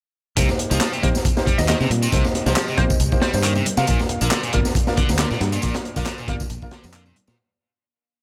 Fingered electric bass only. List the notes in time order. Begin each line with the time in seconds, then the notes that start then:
0.37 C2
0.71 C2
1.03 A#1
1.59 D#2
1.81 C3
1.90 A#2
2.13 C2
2.46 C2
2.78 A#1
3.00 C2
3.34 G2
3.77 C3
3.89 A#1
4.21 A#1
4.55 G1
5.09 D2
5.31 A#2
5.41 G2
5.63 A#1
5.96 A#1
6.28 G1
6.50 A#1
6.84 F2
7.28 A#2